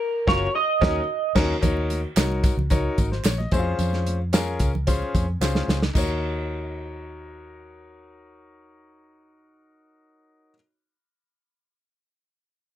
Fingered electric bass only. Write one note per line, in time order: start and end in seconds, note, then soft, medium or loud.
0.28 0.46 F#1 loud
0.81 1.00 D#2 loud
1.35 1.54 D#2 loud
1.63 2.04 D#2 loud
2.17 2.48 C2 medium
2.57 2.88 C#2 medium
2.98 3.19 G#1 medium
3.25 3.45 A#1 medium
3.52 3.73 F2 loud
3.79 4.56 F2 loud
4.60 5.01 C#2 medium
5.15 5.35 F2 loud
5.40 5.61 C#2 medium
5.68 5.89 C#2 medium
5.96 10.53 D#2 medium